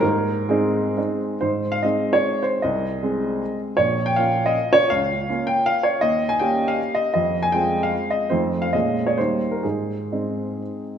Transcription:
0.01 G#2 A#4
0.49 G#3 C4 D#4 G#4
0.97 G#3 C4 D#4
1.41 G#2 C5
1.72 F5
1.83 G#3 C4 D#4 D#5
2.13 C#5
2.43 C5
2.62 C2 D#5
3.03 G#3 C4 G#4
3.77 A#1 C#5
4.06 G5
4.16 A#3 C#4 F4 F5
4.46 D#5
4.73 C#5
4.90 C#2 F5
5.29 A#3 C#4 F4
5.47 G5
5.66 F5
5.83 C#5
6.01 D#2 D#5
6.29 G#5
6.39 A#3 C#4 G4 G5
6.68 F5
6.95 D#5
7.14 F2 D#5
7.43 G#5
7.52 G#3 C4 F4 G5
7.83 F5
8.11 D#5
8.30 F2 A3 C4 D#4 C5
8.62 F5
8.73 A#2 G#3 A#3 C#4 D#5
9.06 C#5
9.18 D#2 G3 A#3 D#4 C5
9.51 A#4
9.63 G#2 G#4
10.12 G#3 C4 D#4

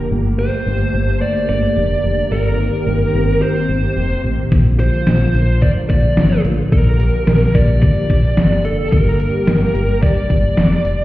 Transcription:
Already playing: D3 A#3
0.12 G1 A3 G4
0.39 C5
0.67 G1
0.94 G1
1.21 D5
1.49 G1 D5
1.77 F1
2.04 F1
2.32 G1 D#3 C4 A#4
2.87 G1
3.14 G1
3.42 C5
3.69 G1
3.97 F1
4.24 A1
4.52 A#1 D3 F3 F4, kick, closed hi-hat
4.79 C5, closed hi-hat
5.07 A#1, snare, closed hi-hat
5.35 A#1, closed hi-hat
5.62 D5, kick, closed hi-hat
5.90 A#1 D5, kick, closed hi-hat
6.17 G1, snare, closed hi-hat
6.45 A1, closed hi-hat
6.72 A#1 G4 A#4, kick, closed hi-hat
7.00 closed hi-hat
7.27 A#1, snare, closed hi-hat
7.55 A#1 D5, kick, closed hi-hat
7.82 D5, kick, closed hi-hat
8.10 A#1, kick, closed hi-hat
8.37 G1, snare, closed hi-hat
8.65 F1 A4, closed hi-hat
8.92 G1 G3 A#3 G4 A#4, kick, closed hi-hat
9.20 closed hi-hat
9.47 G1, snare, closed hi-hat
9.75 G1, closed hi-hat
10.02 D5, kick, closed hi-hat
10.30 G1, kick, closed hi-hat
10.57 F1, snare, closed hi-hat
10.85 F1, closed hi-hat

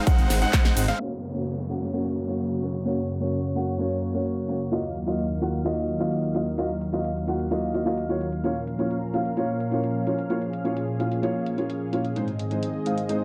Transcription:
Already playing: G#3 C4 D#4
0.07 G#3 C4 D#4 C5 F#5, kick, closed hi-hat, ride, shaker
0.19 G#1, closed hi-hat, shaker
0.30 G#1, snare, open hi-hat, ride, shaker
0.42 G#3 C4 D#4 C5 F#5, closed hi-hat, shaker
0.53 kick, snare, clap, closed hi-hat, ride, shaker
0.65 snare, closed hi-hat, shaker
0.77 G#1, open hi-hat, ride, shaker
0.88 G#3 C4 D#4 C5 F5, snare, shaker
0.99 F#2 C#3 A#3 C#4 F#4 C#5, downlifter
1.23 closed hi-hat
1.34 A#3 C#4 F#4 C#5
1.69 A#3 C#4 F#4 F#5, closed hi-hat
1.81 closed hi-hat
1.92 A#3 C#4 F#4 C#5, closed hi-hat
2.16 closed hi-hat
2.27 A#3 C#4 F#4 C#5, closed hi-hat
2.39 closed hi-hat
2.62 A#3 C#4 F#4 C#5, closed hi-hat
2.74 closed hi-hat
2.85 A#3 C#4 F#4 C#5, closed hi-hat
2.98 closed hi-hat
3.09 closed hi-hat
3.20 A#3 C#4 F#4 C#5, closed hi-hat
3.33 closed hi-hat
3.55 A#3 C#4 F#4 F#5, closed hi-hat
3.67 closed hi-hat
3.78 A#3 C#4 F#4 C#5, closed hi-hat
4.02 closed hi-hat
4.13 A#3 C#4 F#4 C#5, closed hi-hat
4.25 closed hi-hat
4.48 A#3 C#4 F#4 C#5, closed hi-hat
4.60 closed hi-hat
4.71 D#2 D#3 F#3 A#3 F4 F#4 D#5 F5, closed hi-hat
4.84 closed hi-hat
4.95 closed hi-hat
5.06 A#3 F4 F#4 D#5, closed hi-hat
5.19 closed hi-hat
5.41 A#3 F4 F#4 F#5, closed hi-hat
5.53 closed hi-hat
5.65 A#3 F4 F#4 D#5, closed hi-hat
5.88 closed hi-hat
5.99 A#3 F4 F#4 D#5, closed hi-hat
6.12 closed hi-hat
6.34 A#3 F4 F#4 D#5, closed hi-hat
6.46 closed hi-hat
6.57 A#3 F4 F#4 D#5, closed hi-hat
6.70 closed hi-hat
6.81 closed hi-hat
6.92 A#3 F4 F#4 D#5, closed hi-hat
7.05 closed hi-hat
7.16 closed hi-hat
7.27 A#3 F4 F#4 F#5, closed hi-hat
7.40 closed hi-hat
7.51 A#3 F4 F#4 D#5, closed hi-hat
7.74 A#3 F4 F#4 D#5, closed hi-hat
7.85 A#3 F4 F#4 D#5, closed hi-hat
7.98 closed hi-hat
8.09 A#3 F4 F#4 C#5, closed hi-hat
8.21 closed hi-hat
8.33 closed hi-hat
8.44 A#2 F3 A#3 C#4 F4 A#4 C#5, closed hi-hat
8.56 closed hi-hat
8.67 closed hi-hat
8.79 A#3 C#4 F4 C#5, closed hi-hat
8.91 closed hi-hat
9.13 A#3 C#4 F4 F5, closed hi-hat
9.25 closed hi-hat
9.37 A#3 C#4 F4 C#5, closed hi-hat
9.60 closed hi-hat
9.71 A#3 C#4 F4 C#5, closed hi-hat
9.84 closed hi-hat
10.06 A#3 C#4 F4 C#5, closed hi-hat
10.18 closed hi-hat
10.29 A#3 C#4 F4 G#4 C#5, closed hi-hat
10.42 closed hi-hat
10.53 closed hi-hat
10.64 A#3 C#4 F4 C#5, closed hi-hat
10.77 closed hi-hat
10.99 A#3 C#4 F4 F5, closed hi-hat
11.12 closed hi-hat
11.22 A#3 C#4 F4 C#5, closed hi-hat
11.46 closed hi-hat
11.57 A#3 C#4 F4 C#5, closed hi-hat
11.70 closed hi-hat
11.92 A#3 C#4 F4 C#5, closed hi-hat
12.05 closed hi-hat
12.16 G#2 D#3 G#3 C4 D#4 C5 D#5, closed hi-hat
12.28 closed hi-hat
12.39 closed hi-hat
12.50 G#3 C4 D#4 C5, closed hi-hat
12.63 closed hi-hat
12.85 G#3 C4 D#4 F5, closed hi-hat
12.98 closed hi-hat
13.09 G#3 C4 D#4 C5, closed hi-hat

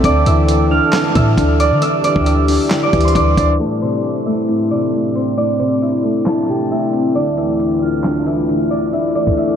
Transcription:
Already playing: C5 E5 G5 A5 E6 G6 A6
0.04 D2 D3 E3 D4 A4 D5 D6, kick, closed hi-hat
0.26 D2 E3 E5 E6, closed hi-hat
0.49 closed hi-hat
0.71 D4 F5 F6
0.92 D3, snare, clap, closed hi-hat
1.15 A2 E3 E5 E6, kick, closed hi-hat
1.38 D2 D3, kick, closed hi-hat
1.60 D5 D6, closed hi-hat
1.72 D3
1.81 D3 G4 E5 E6, closed hi-hat
2.04 E3 D5 D6, closed hi-hat
2.16 D2, kick
2.26 E5 E6, closed hi-hat
2.48 D4, open hi-hat
2.70 D3, snare, clap, closed hi-hat
2.83 D5 D6
2.93 D2 E3, kick, closed hi-hat
3.00 closed hi-hat
3.05 C5 C6, closed hi-hat
3.14 D2 D3 D5 D6, kick, closed hi-hat
3.37 D2 D5, kick, closed hi-hat
3.60 A2 A3 C4 E4 A4, closed hi-hat
3.82 C3 C4 C5, closed hi-hat
4.04 closed hi-hat
4.26 A3 E4 E5
4.48 A2, closed hi-hat
4.71 C3 D4 D5, closed hi-hat
4.93 A2, closed hi-hat
5.15 C4 C5, closed hi-hat
5.37 A2 D4 D5, closed hi-hat
5.59 C3 C4 C5, closed hi-hat
5.82 E4 E5, closed hi-hat
5.89 closed hi-hat
5.97 closed hi-hat
6.04 A3
6.26 A2 A4 A5, snare, clap, closed hi-hat
6.48 C3 G4 G5, closed hi-hat
6.70 A2 E4 E5, closed hi-hat
6.77 closed hi-hat
6.83 closed hi-hat
6.88 closed hi-hat
6.93 C4, closed hi-hat
7.15 D2 D3 A3 D4 D5, closed hi-hat
7.37 E3 E4 E5, closed hi-hat
7.60 closed hi-hat
7.81 D4 F4 F5
8.04 D3, snare, clap, closed hi-hat
8.26 E3 E4 E5, closed hi-hat
8.49 D3, closed hi-hat
8.70 D4 D5, closed hi-hat
8.92 D3 E4 E5, closed hi-hat, swell
9.15 E3 D4 D5, closed hi-hat
9.27 kick
9.37 E4 E5, closed hi-hat

